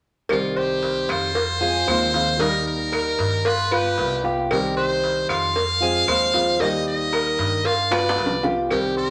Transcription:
0.29 upright bass C2, nylon-string guitar C3 D#3 G3 C4 G4, muted trumpet F4, cowbell, claves
0.56 muted trumpet G4, cuban tres C5
0.83 cowbell
1.09 upright bass F2, cuban tres F4, muted trumpet C5, cowbell, claves
1.34 muted nylon-string guitar stroke, cowbell
1.61 nylon-string guitar F3 G#3 C4 F4, cuban tres G#4
1.87 upright bass D#2, nylon-string guitar F3 G#3 C4 F4, cuban tres C5, cowbell, claves
2.14 nylon-string guitar F3 G#3 C4 F4, cowbell
2.38 nylon-string guitar D#3 G3 A#3 D#4 G4, cuban tres D#4, muted trumpet A#4, cowbell
2.68 muted trumpet A#4
2.92 cuban tres A#4, cowbell, claves
3.19 upright bass G2, cowbell
3.45 cuban tres F4, muted trumpet B4, muted nylon-string guitar stroke, cowbell
3.71 nylon-string guitar B3 F4, muted trumpet G4, cuban tres B4, claves
3.98 upright bass C2, nylon-string guitar G3 B3 F4, cowbell
4.24 nylon-string guitar B3 F4, cuban tres G4
4.50 nylon-string guitar C3 D#3 G3 C4 G4, muted trumpet A#4, cowbell, claves
4.77 cuban tres C5, muted trumpet C5
5.04 cowbell
5.29 upright bass F2, cuban tres F4, muted trumpet F5, cowbell, claves
5.55 muted nylon-string guitar stroke, cowbell
5.80 nylon-string guitar F3 G#3 C4 F4, cuban tres G#4
6.07 upright bass D#2, nylon-string guitar F3 G#3 C4 F4, cuban tres C5, cowbell, claves
6.34 nylon-string guitar F3 G#3 C4 F4, cowbell
6.60 nylon-string guitar D#3 G3 A#3 D#4 G4, cuban tres D#4, muted trumpet D#5, cowbell
6.88 muted trumpet D#5
7.13 cuban tres A#4, cowbell, claves
7.38 upright bass G2, cowbell
7.65 cuban tres F4, muted trumpet F5, muted nylon-string guitar stroke, cowbell
7.91 nylon-string guitar B3 F4, cuban tres B4, muted trumpet D5, high bongo, claves
8.09 high bongo
8.17 upright bass C2, nylon-string guitar G3 B3 F4, cowbell
8.26 low bongo
8.43 nylon-string guitar B3 F4, cuban tres G4, low bongo
8.69 nylon-string guitar C3 D#3 G3 C4 G4, muted trumpet G4, cowbell, claves
8.97 muted trumpet A#4, cuban tres C5

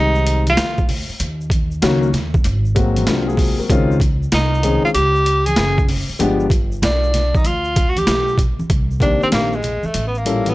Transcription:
Already playing: upright bass C2, grand piano D#3 G3 G#3 C4 G4
0.00 tenor saxophone D#4
0.15 shaker
0.26 closed hi-hat, shaker
0.47 tenor saxophone F4, closed hi-hat, high conga, shaker
0.57 upright bass D2, snare, closed hi-hat, shaker
0.78 kick, shaker
0.89 open hi-hat, low conga, shaker
1.09 muted upright bass stroke, shaker
1.20 upright bass D#2, closed hi-hat, shaker
1.41 shaker
1.50 kick, closed hi-hat, high conga, shaker
1.71 shaker
1.82 upright bass C#2, grand piano D#3 F#3 A#3 C#4 F#4, snare, closed hi-hat, shaker
2.03 shaker
2.13 upright bass D#2, snare, closed hi-hat, low conga, shaker
2.34 kick, shaker
2.44 upright bass G#1, closed hi-hat, shaker
2.65 shaker
2.75 grand piano F#3 G#3 A#3 C4 F#4, kick, closed hi-hat, shaker
2.96 closed hi-hat, high conga, shaker
3.07 upright bass C2, grand piano D4 F4, snare, closed hi-hat, shaker
3.27 grand piano F4 G#4, shaker
3.37 kick, open hi-hat, low conga, shaker
3.59 grand piano F#4 A#4, muted upright bass stroke, shaker
3.69 upright bass C#2, grand piano D#3 G#3 C4 C#4 F4, kick, closed hi-hat, shaker
3.92 shaker
4.00 kick, closed hi-hat, high conga, shaker
4.23 shaker
4.32 upright bass C2, tenor saxophone D#4, snare, closed hi-hat, shaker
4.54 shaker
4.62 grand piano D#3 G#3 C4 C#4 G#4, closed hi-hat, low conga, shaker
4.84 tenor saxophone F4, muted upright bass stroke, shaker
4.95 upright bass C#2, tenor saxophone G4, closed hi-hat, shaker
5.16 shaker
5.26 closed hi-hat, shaker
5.46 tenor saxophone G#4, closed hi-hat, high conga, shaker
5.56 upright bass F#1, snare, closed hi-hat, shaker
5.78 kick, shaker
5.89 open hi-hat, low conga, shaker
6.08 muted upright bass stroke, shaker
6.19 upright bass G1, grand piano F3 G#3 B3 D4 G4, closed hi-hat, shaker
6.40 shaker
6.50 kick, closed hi-hat, shaker
6.72 shaker
6.82 upright bass B1, tenor saxophone D4, snare, closed hi-hat, shaker
7.03 shaker
7.14 snare, closed hi-hat, low conga, shaker
7.35 tenor saxophone D#4, muted upright bass stroke, kick, high conga, shaker
7.44 upright bass D2, tenor saxophone F4, closed hi-hat, high conga, shaker
7.65 shaker
7.76 kick, closed hi-hat, shaker
7.89 tenor saxophone F#4
7.97 tenor saxophone G4, closed hi-hat, high conga, shaker
8.07 upright bass B1, snare, closed hi-hat, shaker
8.28 shaker
8.38 kick, closed hi-hat, low conga, shaker
8.59 muted upright bass stroke, high conga, shaker
8.70 upright bass C2, kick, closed hi-hat, shaker
8.91 shaker
9.00 grand piano D#3 A#3 C4 D4 G4, tenor saxophone D4, kick, closed hi-hat, high conga, low conga, shaker
9.22 tenor saxophone C4, shaker
9.32 upright bass A#1, tenor saxophone A#3, snare, closed hi-hat, shaker
9.52 tenor saxophone G#3, shaker
9.63 closed hi-hat, low conga, shaker
9.83 tenor saxophone A3, muted upright bass stroke, high conga, shaker
9.94 upright bass A1, closed hi-hat, shaker
10.07 tenor saxophone B3
10.15 tenor saxophone A#3, shaker
10.25 grand piano A#2 G3 C#4 E4 A4, closed hi-hat, shaker
10.46 tenor saxophone B3, closed hi-hat, high conga, shaker

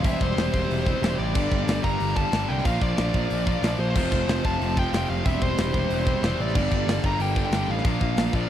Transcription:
0.03 picked electric bass E1, distorted electric guitar C3 G3 C4 E4 G4 C5, lead electric guitar E5, kick, open hi-hat
0.21 picked electric bass E1, lead electric guitar C5, kick
0.36 picked electric bass E1, snare, open hi-hat
0.53 picked electric bass E1, distorted electric guitar C3 G3 C4, kick
0.70 picked electric bass E1, open hi-hat
0.84 distorted electric guitar C3 G3 C4, kick
1.01 picked electric bass E1, distorted electric guitar C3 G3 C4, snare, open hi-hat
1.19 picked electric bass A1, lead electric guitar D5
1.34 picked electric bass G1, distorted electric guitar G2 D3 G3 A#3 D4 G4, kick, crash
1.51 picked electric bass G1, kick
1.67 picked electric bass G1, snare, open hi-hat
1.82 picked electric bass G1, distorted electric guitar G2 D3 G3, lead electric guitar A#5, kick
2.00 picked electric bass G1, open hi-hat
2.15 distorted electric guitar G2 D3 G3, lead electric guitar A5, kick
2.32 picked electric bass G1, distorted electric guitar G2 D3 G3, snare, open hi-hat
2.49 picked electric bass C2, lead electric guitar G5
2.58 snare
2.65 picked electric bass A#1, distorted electric guitar A#2 F3 A#3 D4 F4 A#4, lead electric guitar F5, kick, open hi-hat
2.81 picked electric bass A#1, lead electric guitar D5, kick
2.97 picked electric bass A#1, snare, open hi-hat
3.07 snare
3.13 picked electric bass A#1, distorted electric guitar A#2 F3 A#3, kick
3.30 picked electric bass A#1, open hi-hat
3.46 distorted electric guitar A#2 F3 A#3, kick
3.62 picked electric bass A#1, distorted electric guitar A#2 F3 A#3, snare, open hi-hat
3.79 picked electric bass A#1, lead electric guitar C5
3.94 picked electric bass F1, distorted electric guitar F2 C3 F3 A3 C4 F4, kick, crash
4.12 picked electric bass F1, kick
4.27 picked electric bass F1, snare, open hi-hat
4.37 snare
4.43 picked electric bass F1, distorted electric guitar F2 C3 F3, lead electric guitar A5, kick
4.60 picked electric bass F1, open hi-hat
4.75 distorted electric guitar F2 C3 F3, lead electric guitar G5, kick
4.92 picked electric bass F1, distorted electric guitar F2 C3 F3, snare, open hi-hat
5.09 picked electric bass F1, lead electric guitar F5
5.24 picked electric bass E1, distorted electric guitar C3 G3 C4 E4 G4 C5, lead electric guitar E5, kick, open hi-hat
5.42 picked electric bass E1, lead electric guitar C5, kick
5.58 picked electric bass E1, snare, open hi-hat
5.67 snare
5.73 picked electric bass E1, distorted electric guitar C3 G3 C4, kick
5.90 picked electric bass E1, open hi-hat
6.05 distorted electric guitar C3 G3 C4, kick
6.22 picked electric bass E1, distorted electric guitar C3 G3 C4, snare, open hi-hat
6.39 picked electric bass A1, lead electric guitar D5
6.49 snare
6.54 picked electric bass G1, distorted electric guitar G2 D3 G3 A#3 D4 G4, kick, crash
6.71 picked electric bass G1, kick
6.87 picked electric bass G1, snare, open hi-hat
6.98 snare
7.03 picked electric bass G1, distorted electric guitar G2 D3 G3, lead electric guitar A#5, kick
7.19 picked electric bass G1, lead electric guitar G5, open hi-hat
7.35 distorted electric guitar G2 D3 G3, kick
7.46 lead electric guitar G5
7.51 picked electric bass G1, distorted electric guitar G2 D3 G3, snare, open hi-hat
7.68 picked electric bass A1, lead electric guitar F5
7.78 snare
7.84 picked electric bass A#1, distorted electric guitar A#2 F3 A#3 D4 F4 A#4, kick, open hi-hat
8.01 picked electric bass A#1, kick
8.16 picked electric bass A#1, snare, open hi-hat
8.26 snare
8.32 picked electric bass A#1, distorted electric guitar A#2 F3 A#3, lead electric guitar D5, kick

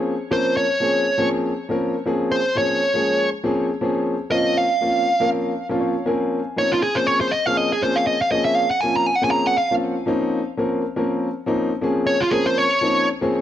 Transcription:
Already playing: grand piano F3 A#3 C4 C#4 G#4
0.31 grand piano F3 A#3 C4 C#4 A#4, lead electric guitar C5
0.57 lead electric guitar C#5
0.80 grand piano F3 A#3 C4 C#4 G#4
1.18 grand piano F3 A#3 C4 C#4 G#4
1.69 grand piano F3 A#3 C4 C#4 A#4
2.05 grand piano F3 A#3 C4 C#4 G#4
2.32 lead electric guitar C5
2.55 grand piano F3 A#3 C4 C#4 G#4, lead electric guitar C#5
2.94 grand piano F3 G#3 A#3 C#4 G#4
3.44 grand piano F3 A#3 C4 C#4 G#4
3.81 grand piano F3 A#3 C4 C#4 G#4
4.31 grand piano F3 A#3 C4 C#4 F4, lead electric guitar D#5
4.58 lead electric guitar F5
4.81 grand piano F3 A#3 C4 C#4 F4
5.20 grand piano F3 A#3 C4 C#4 A#4
5.69 grand piano F3 A#3 C4 C#4 F4
5.80 grand piano C#5
6.05 grand piano F3 A#3 C4 C#4 A#4 G#5
6.56 grand piano F3 A#3 C4 C#4 D#4, lead electric guitar C#5
6.72 lead electric guitar F4
6.82 lead electric guitar G#4
6.95 grand piano F3 A#3 C4 C#4 G#4, lead electric guitar C5
7.07 lead electric guitar C#5
7.21 lead electric guitar C5
7.31 lead electric guitar D#5
7.46 grand piano F3 A#3 C4 C#4 G#4, lead electric guitar F5
7.57 lead electric guitar D#5
7.72 lead electric guitar G#4
7.81 grand piano F3 A#3 C4 C#4 G#4, lead electric guitar C5
7.96 lead electric guitar F5
8.07 lead electric guitar D#5
8.22 lead electric guitar F5
8.31 grand piano F3 A#3 C4 C#4 G#4, lead electric guitar D#5
8.45 lead electric guitar E5
8.56 lead electric guitar F5
8.71 lead electric guitar F#5
8.81 grand piano F3 A#3 C4 C#4, lead electric guitar G#5
8.85 grand piano F4
8.96 lead electric guitar A#5
9.06 lead electric guitar G#5
9.16 lead electric guitar F#5
9.22 grand piano F3 A#3 C4 C#4 G#4, lead electric guitar G#5
9.31 lead electric guitar A#5
9.47 lead electric guitar F#5
9.58 lead electric guitar F5
9.71 grand piano F3 A#3 C4 C#4 F4
10.06 grand piano F3 A#3 C4 C#4 D#4
10.57 grand piano F3 A#3 C4 C#4 A#4
10.96 grand piano F3 A#3 C4 C#4 A#4
11.46 grand piano F3 A#3 C4 C#4 D#4
11.81 grand piano F3 A#3 C4 C#4 G#4
12.07 lead electric guitar C#5
12.21 lead electric guitar F4
12.31 grand piano F3 A#3 C4 C#4 A#4, lead electric guitar G#4
12.46 lead electric guitar C5
12.58 lead electric guitar C#5
12.81 grand piano F3 A#3 C4 C#4 D#4
13.21 grand piano F3 A#3 C4 C#4 G#4

